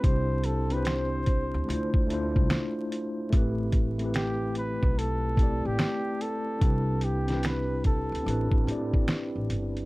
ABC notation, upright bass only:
X:1
M:4/4
L:1/16
Q:"Swing 16ths" 1/4=73
K:Am
V:1 name="Upright bass" clef=bass
C,,6- C,, D,, D,,3 C,, z4 | A,,,6- A,,, B,,,4 A,,, z4 | C,,6- C,, D,, A,,, A,,, A,,2 z A,,, G,,,2 |]